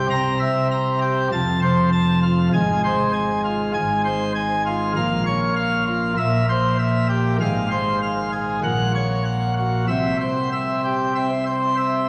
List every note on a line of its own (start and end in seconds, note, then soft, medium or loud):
0.10 1.28 C2 medium
0.10 1.28 C3 medium
0.10 0.38 A#5 loud
0.40 0.67 E5 medium
0.71 0.99 A#5 medium
1.01 1.27 G4 medium
1.32 2.49 F1 medium
1.32 2.49 F2 loud
1.32 1.59 A5 loud
1.62 1.89 C5 medium
1.92 2.19 A5 medium
2.23 2.49 F4 medium
2.53 3.72 G#1 medium
2.53 3.72 G#2 medium
2.53 2.81 G#5 loud
2.84 3.11 C5 medium
3.13 3.40 G#5 medium
3.44 3.71 F4 medium
3.74 4.93 G#1 medium
3.74 4.92 G#2 medium
3.74 4.01 G#5 medium
4.05 4.32 C5 medium
4.35 4.62 G#5 medium
4.66 4.92 F4 medium
4.96 6.14 A#1 medium
4.96 6.14 A#2 medium
4.96 5.23 F5 loud
5.26 5.53 C#5 medium
5.56 5.84 F5 medium
5.87 6.13 F4 medium
6.17 7.37 A#1 medium
6.17 7.37 A#2 medium
6.17 6.45 E5 medium
6.49 6.76 C5 medium
6.79 7.07 E5 medium
7.09 7.36 G4 medium
7.40 8.60 G#1 medium
7.40 8.60 G#2 medium
7.40 7.68 F5 loud
7.71 7.99 C5 medium
8.02 8.30 F5 medium
8.33 8.59 G#4 medium
8.64 9.85 A#1 medium
8.64 9.85 A#2 medium
8.64 8.92 F#5 medium
8.95 9.23 C#5 medium
9.25 9.54 F#5 medium
9.58 9.84 F#4 medium
9.88 12.09 C2 medium
9.88 12.09 C3 medium
9.88 10.17 E5 medium
10.21 10.49 C5 medium
10.52 10.81 E5 medium
10.85 11.13 G4 medium
11.16 11.30 C4 medium
11.16 11.44 E5 medium
11.46 11.75 C5 medium
11.77 12.06 E5 medium